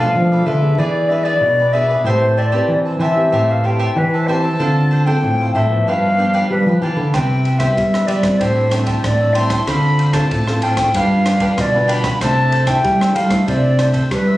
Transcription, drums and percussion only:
7.14 kick medium
7.14 cross-stick medium
7.14 ride soft
7.45 ride soft
7.60 kick medium
7.60 cross-stick medium
7.60 ride soft
7.77 kick medium
7.77 ride soft
7.94 cross-stick medium
8.08 ride medium
8.23 kick medium
8.23 cross-stick medium
8.23 ride soft
8.41 kick medium
8.41 ride medium
8.71 cross-stick medium
8.71 ride medium
8.87 kick medium
8.87 ride soft
9.04 kick medium
9.04 cross-stick medium
9.04 ride soft
9.35 ride soft
9.50 kick medium
9.50 cross-stick medium
9.50 ride soft
9.67 kick medium
9.67 cross-stick medium
9.67 ride soft
9.99 ride soft
10.13 kick medium
10.13 cross-stick medium
10.13 ride soft
10.31 kick medium
10.31 ride soft
10.47 cross-stick medium
10.62 ride soft
10.77 kick medium
10.77 cross-stick medium
10.77 ride soft
10.94 kick medium
10.94 ride soft
11.26 cross-stick medium
11.26 ride soft
11.40 kick medium
11.40 ride soft
11.58 kick medium
11.58 cross-stick medium
11.58 ride soft
11.89 ride medium
12.04 kick medium
12.04 cross-stick medium
12.04 ride soft
12.21 kick medium
12.21 cross-stick medium
12.21 ride soft
12.52 ride soft
12.67 kick medium
12.67 cross-stick medium
12.67 ride soft
12.84 kick medium
12.84 ride soft
13.01 cross-stick medium
13.16 ride soft
13.31 kick medium
13.31 cross-stick medium
13.31 ride medium
13.48 kick medium
13.48 ride soft
13.79 cross-stick medium
13.79 ride medium
13.94 kick medium
13.94 ride medium
14.11 kick medium
14.11 cross-stick medium
14.11 ride soft

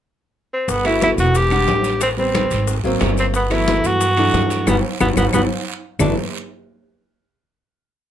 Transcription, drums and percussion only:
0.68 high bongo medium
0.68 high conga soft
0.68 long guiro medium
0.68 maracas medium
0.85 high conga soft
0.85 high timbale medium
0.85 claves medium
0.85 maracas soft
1.01 high bongo medium
1.01 high conga medium
1.01 high timbale medium
1.01 low timbale medium
1.01 short guiro medium
1.01 maracas soft
1.18 high conga soft
1.18 short guiro medium
1.18 maracas medium
1.35 high bongo medium
1.35 high conga soft
1.35 high timbale medium
1.35 long guiro medium
1.35 maracas medium
1.51 high conga soft
1.51 high timbale medium
1.51 claves medium
1.51 maracas soft
1.68 high bongo medium
1.68 low bongo medium
1.68 high conga medium
1.68 low timbale medium
1.68 short guiro medium
1.68 maracas soft
1.84 high conga soft
1.84 high timbale medium
1.84 short guiro medium
1.84 maracas medium
2.01 high bongo medium
2.01 high conga soft
2.01 high timbale medium
2.01 long guiro medium
2.01 claves medium
2.01 maracas medium
2.18 high conga soft
2.18 maracas soft
2.35 high bongo medium
2.35 high conga medium
2.35 high timbale medium
2.35 low timbale medium
2.35 short guiro medium
2.35 claves medium
2.35 maracas soft
2.51 high bongo soft
2.51 high conga soft
2.51 high timbale medium
2.51 short guiro medium
2.51 maracas medium
2.67 high bongo medium
2.67 high conga soft
2.67 long guiro medium
2.67 maracas medium
2.84 high bongo soft
2.84 high conga soft
2.84 maracas soft
3.01 high bongo medium
3.01 low bongo medium
3.01 high conga medium
3.01 high timbale medium
3.01 low timbale medium
3.01 short guiro medium
3.01 claves medium
3.01 maracas soft
3.17 high bongo soft
3.17 short guiro medium
3.17 maracas medium
3.34 high bongo medium
3.34 high conga soft
3.34 long guiro medium
3.34 maracas medium
3.51 high conga soft
3.51 high timbale medium
3.51 claves medium
3.51 maracas soft
3.68 high bongo medium
3.68 high conga medium
3.68 high timbale medium
3.68 low timbale medium
3.68 short guiro medium
3.68 maracas soft
3.84 high conga soft
3.84 short guiro medium
3.84 maracas medium
4.00 high bongo medium
4.00 high conga soft
4.00 high timbale medium
4.00 long guiro medium
4.00 maracas medium
4.17 high conga soft
4.17 high timbale medium
4.17 claves medium
4.17 maracas soft
4.34 high bongo medium
4.34 low bongo medium
4.34 high conga medium
4.34 low timbale medium
4.34 short guiro medium
4.34 maracas soft
4.50 high conga soft
4.50 high timbale medium
4.50 short guiro medium
4.50 maracas medium
4.67 low bongo loud
4.67 high conga medium
4.67 high timbale loud
4.67 long guiro medium
4.67 claves medium
4.67 maracas medium
5.00 low bongo medium
5.00 high conga loud
5.00 high timbale medium
5.00 long guiro medium
5.00 claves medium
5.00 maracas medium
5.17 low bongo medium
5.17 high conga loud
5.17 high timbale loud
5.17 long guiro loud
5.17 claves loud
5.17 maracas medium
5.33 low bongo medium
5.33 high conga medium
5.33 high timbale loud
5.33 long guiro medium
5.33 claves medium
5.33 maracas medium
5.99 low bongo loud
5.99 low conga loud
5.99 low timbale loud
5.99 long guiro medium
5.99 claves loud
5.99 maracas loud

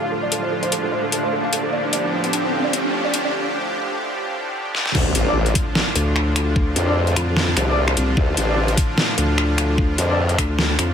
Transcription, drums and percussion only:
0.32 closed hi-hat medium
0.63 closed hi-hat soft
0.72 closed hi-hat medium
1.12 closed hi-hat medium
1.53 closed hi-hat medium
1.93 closed hi-hat medium
2.24 closed hi-hat soft
2.33 closed hi-hat medium
2.73 closed hi-hat medium
3.14 closed hi-hat medium
4.75 snare medium
4.86 snare medium
4.95 kick loud
4.95 crash loud
5.15 closed hi-hat medium
5.46 closed hi-hat soft
5.55 kick loud
5.55 closed hi-hat medium
5.75 snare loud
5.96 closed hi-hat medium
6.16 finger snap medium
6.36 finger snap medium
6.36 closed hi-hat medium
6.56 kick loud
6.76 closed hi-hat medium
7.07 closed hi-hat soft
7.16 finger snap medium
7.16 closed hi-hat medium
7.37 snare loud
7.57 finger snap medium
7.57 closed hi-hat medium
7.88 finger snap medium
7.97 closed hi-hat medium
8.17 kick loud
8.37 closed hi-hat medium
8.68 closed hi-hat soft
8.77 kick loud
8.77 closed hi-hat medium
8.98 snare loud
9.18 closed hi-hat medium
9.38 finger snap soft
9.58 finger snap medium
9.58 closed hi-hat medium
9.78 kick loud
9.98 closed hi-hat medium
10.29 closed hi-hat soft
10.38 finger snap medium
10.38 kick medium
10.38 closed hi-hat medium
10.59 snare loud
10.79 finger snap medium
10.79 closed hi-hat medium

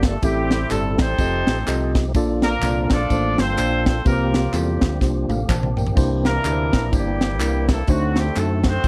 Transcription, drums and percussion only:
0.03 kick loud
0.03 snare loud
0.03 ride medium
0.03 tambourine medium
0.23 kick loud
0.23 ride medium
0.23 tambourine medium
0.51 snare loud
0.51 ride medium
0.51 tambourine soft
0.71 clap medium
0.71 ride medium
0.71 tambourine medium
0.98 kick loud
0.98 snare loud
0.98 ride medium
0.98 tambourine medium
1.18 kick loud
1.18 ride medium
1.18 tambourine medium
1.47 snare loud
1.47 ride medium
1.47 tambourine medium
1.67 clap loud
1.67 ride medium
1.67 tambourine loud
1.95 kick medium
1.95 snare loud
1.95 ride medium
1.95 tambourine medium
2.15 kick loud
2.15 ride medium
2.15 tambourine medium
2.42 snare loud
2.42 ride soft
2.42 tambourine soft
2.62 clap medium
2.62 ride medium
2.62 tambourine loud
2.90 kick medium
2.90 snare loud
2.90 ride medium
2.90 tambourine medium
3.10 kick medium
3.10 ride medium
3.10 tambourine medium
3.38 snare loud
3.38 ride medium
3.38 tambourine medium
3.58 clap medium
3.58 ride medium
3.58 tambourine loud
3.86 kick medium
3.86 snare loud
3.86 ride medium
3.86 tambourine medium
4.06 kick loud
4.06 ride medium
4.06 tambourine medium
4.34 snare loud
4.34 ride soft
4.34 tambourine medium
4.54 clap medium
4.54 ride medium
4.54 tambourine medium
4.81 kick medium
4.81 snare loud
4.81 ride medium
4.81 tambourine medium
5.01 kick loud
5.01 snare medium
5.01 tambourine medium
5.30 high tom medium
5.30 tambourine medium
5.49 kick loud
5.49 clap loud
5.49 mid tom medium
5.49 tambourine loud
5.63 mid tom medium
5.77 floor tom medium
5.77 tambourine medium
5.87 floor tom medium
5.97 kick loud
5.97 crash medium
5.97 tambourine medium
6.25 snare loud
6.25 ride soft
6.25 tambourine soft
6.45 clap medium
6.45 ride medium
6.45 tambourine loud
6.73 kick medium
6.73 snare loud
6.73 ride medium
6.73 tambourine medium
6.93 kick loud
6.93 ride medium
6.93 tambourine medium
7.21 snare loud
7.21 ride medium
7.21 tambourine medium
7.40 clap loud
7.40 ride medium
7.40 tambourine loud
7.69 kick medium
7.69 snare loud
7.69 ride medium
7.69 tambourine medium
7.87 kick loud
7.87 ride medium
7.87 tambourine medium
8.16 snare loud
8.16 ride medium
8.16 tambourine soft
8.36 clap medium
8.36 ride medium
8.36 tambourine medium
8.64 kick loud
8.64 snare loud
8.64 ride medium
8.64 tambourine medium
8.84 kick loud
8.84 ride medium

